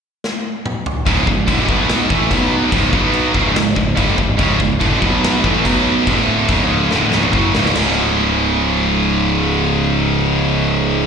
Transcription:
0.24 snare
0.66 mid tom
0.86 floor tom
1.06 C#1 C#2 G#2 C#3, kick, crash
1.27 C#1 C#2 G#2, kick
1.47 D1 D2 A2 D3, kick, crash
1.68 B1 B2 F#3 B3, kick
1.89 snare, crash
2.10 A1 A2 E3 A3, kick
2.31 B1 B2 F#3 B3, kick, crash
2.72 C#1 C#2 G#2 C#3, kick, crash
2.93 B1 B2 F#3 B3, kick
3.14 crash
3.34 C#1 C#2 G#2 C#3, kick
3.56 C#1 C#2 G#2, snare, crash
3.76 C#1 C#2 G#2, kick
3.96 G1 G2 D3 G3, kick, crash
4.18 C#1 C#2 G#2, kick
4.38 C#1 C#2 G#2 C#3, kick, crash
4.60 C#1 C#2 G#2, kick
4.80 D1 D2 A2 D3, kick, crash
5.00 B1 B2 F#3 B3, kick
5.24 snare, crash
5.43 A1 A2 E3 A3, kick
5.64 B1 B2 F#3 B3, kick, crash
6.07 D1 D2 A2 D3, kick, crash
6.48 C#1 C#2 G#2 C#3, kick, crash
6.91 D1 D2 A2 D3, snare
7.12 C#1 C#2 G#2 C#3, snare
7.23 mid tom
7.33 F#1 F#2 C#3 F#3, kick
7.54 C#1 C#2 G#2 C#3, snare
7.66 snare
7.74 C#1 C#2 G#2 C#3, snare, crash

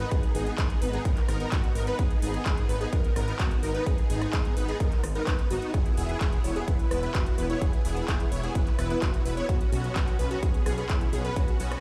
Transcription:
0.11 G#1 B3 D#4 G#4, kick, closed hi-hat
0.23 closed hi-hat
0.35 G#1 B3 D#4 G#4, open hi-hat
0.47 closed hi-hat
0.58 G#1 B3 D#4 G#4, kick, clap, closed hi-hat
0.70 closed hi-hat
0.82 G#1 B3 D#4 B4, open hi-hat
0.93 B3 D#4 G#4, closed hi-hat
1.05 G#1 A#4, kick, closed hi-hat
1.17 clap, closed hi-hat
1.28 G#1 B3 D#4 A#4, cross-stick, open hi-hat
1.40 B3 D#4 A#4, closed hi-hat
1.52 G#1 B3 D#4 F#4, kick, clap, closed hi-hat
1.64 closed hi-hat
1.75 G#1 B3 D#4 A#4, open hi-hat
1.87 B3 D#4 B4, closed hi-hat
1.99 G#1 B3 D#4 G#4, kick, closed hi-hat
2.11 closed hi-hat
2.22 G#1 B3 D#4 G#4, open hi-hat
2.34 closed hi-hat
2.46 G#1 D#4 G#4, kick, clap, closed hi-hat
2.57 closed hi-hat
2.69 G#1 B3 D#4 B4, open hi-hat
2.81 B3 D#4 G#4, closed hi-hat
2.92 G#1 B3 D#4 A#4, kick, closed hi-hat
3.04 closed hi-hat
3.16 G#1 B3 D#4 A#4, cross-stick, open hi-hat
3.28 B3 D#4 A#4, closed hi-hat
3.39 G#1 B3 D#4 F#4, kick, clap, closed hi-hat
3.51 closed hi-hat
3.63 G#1 B3 D#4 A#4, open hi-hat
3.74 B3 D#4 B4, closed hi-hat
3.86 G#1 B3 D#4 G#4, kick, closed hi-hat
3.98 closed hi-hat
4.10 G#1 B3 D#4 G#4, open hi-hat
4.22 cross-stick, closed hi-hat
4.33 G#1 B3 D#4 G#4, kick, clap, closed hi-hat
4.45 closed hi-hat
4.57 G#1 B3 D#4 B4, open hi-hat
4.68 B3 D#4 G#4, closed hi-hat
4.80 G#1 B3 D#4 A#4, kick, closed hi-hat
4.92 clap, closed hi-hat
5.04 G#1, cross-stick, open hi-hat
5.15 B3 D#4 A#4, closed hi-hat
5.27 G#1 B3 D#4 B4, kick, clap, closed hi-hat
5.39 closed hi-hat
5.50 G#1 B3 D#4 F#4, open hi-hat
5.62 closed hi-hat
5.74 E1 G#4, kick, closed hi-hat
5.86 closed hi-hat
5.97 E1 B3 E4 G#4, open hi-hat
6.09 closed hi-hat
6.21 E1 B3 E4 G#4, kick, clap, closed hi-hat
6.33 closed hi-hat
6.44 E1 B3 E4 C#5, open hi-hat
6.56 B3 E4 G#4, closed hi-hat
6.68 E1 B3 E4 B4, kick, closed hi-hat
6.79 closed hi-hat
6.91 E1 B3 E4 B4, cross-stick, open hi-hat
7.03 B3 E4 B4, closed hi-hat
7.14 E1 B3 E4 F#4, kick, clap, closed hi-hat
7.26 closed hi-hat
7.38 E1 B3 E4 B4, open hi-hat
7.50 B3 E4 C#5, closed hi-hat
7.61 E1 B3 E4 G#4, kick, closed hi-hat
7.73 closed hi-hat
7.85 E1 B3 E4 G#4, open hi-hat
7.97 closed hi-hat
8.08 E1 E4 G#4, kick, clap, closed hi-hat
8.20 closed hi-hat
8.32 E1 B3 E4 C#5, open hi-hat
8.43 B3 E4 G#4, closed hi-hat
8.55 E1 B3 E4 B4, kick, closed hi-hat
8.67 clap, closed hi-hat
8.78 E1 B3 E4 B4, cross-stick, open hi-hat
8.90 B3 E4 B4, closed hi-hat
9.02 E1 B3 E4 F#4, kick, clap, closed hi-hat
9.14 closed hi-hat
9.25 E1 B3 E4 B4, open hi-hat
9.37 B3 E4 C#5, closed hi-hat
9.49 B1 B3 C#4 F#4, kick, closed hi-hat
9.61 closed hi-hat
9.72 B1 B3 C#4 F#4, open hi-hat
9.84 closed hi-hat
9.96 B1 B3 C#4 F#4, kick, clap, closed hi-hat
10.08 closed hi-hat
10.19 B1 B3 C#4 B4, open hi-hat
10.31 B3 C#4 F#4, closed hi-hat
10.43 B1 B3 C#4 G#4, kick, closed hi-hat
10.54 closed hi-hat
10.66 B1 B3 C#4 G#4, cross-stick, open hi-hat
10.78 B3 C#4 G#4, closed hi-hat
10.89 B1 B3 C#4 E4, kick, clap, closed hi-hat
11.01 closed hi-hat
11.13 B1 B3 C#4 G#4, open hi-hat
11.24 B3 C#4 B4, closed hi-hat
11.36 B1 B3 C#4 F#4, kick, closed hi-hat
11.48 closed hi-hat
11.60 B1 B3 C#4 F#4, open hi-hat
11.72 cross-stick, closed hi-hat

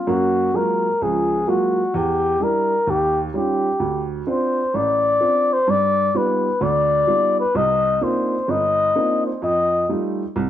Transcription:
Already playing: F4
0.07 F#2 A#3 F#4
0.54 F#3 G#3 A#3 F4 A#4
1.01 C#2 F3 G#4
1.47 F#3 G#3 A#3 F4 F#4
1.94 E2 G4
2.40 G3 D4 E4 A#4
2.87 D#2 G4
3.34 G3 C#4 D#4 F4 G4
3.80 D2
4.27 C4 D4 F4 C5
4.74 A1 D5
5.20 C4 D4 F4
5.53 C5
5.67 G2 D5
6.15 G3 B3 D#4 F4 B4
6.61 D2 D3 D5
7.07 G3 B3 D#4 F4
7.40 B4
7.55 C2 C3 D#5
8.01 A#3 C4 D4 D#4 F4 C5
8.48 G1 D#5
8.95 A#3 C4 D4 D#4 F4
9.27 C5
9.42 F2 D#5
9.89 G3 A3 D#4 F4
10.36 C2

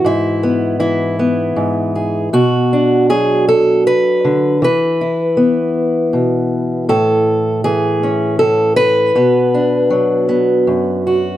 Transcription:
Already playing: E3
0.05 G#2 E4
0.43 B3
0.80 E3 E4
1.19 B3
1.56 G#2
1.95 G#4
2.33 B2 F#4
2.73 D4
3.09 F#3 G#4
3.49 A4
3.87 B4
4.25 D3
4.62 E3 B4
5.01 E4
5.37 B3
6.13 B2
6.89 A2 A4
7.64 E3 G#4
8.03 C#4
8.39 A2 A4
8.76 B4
9.15 B2 B3
9.54 D4
9.90 F#3
10.29 B3
10.67 F#2
11.07 F#4

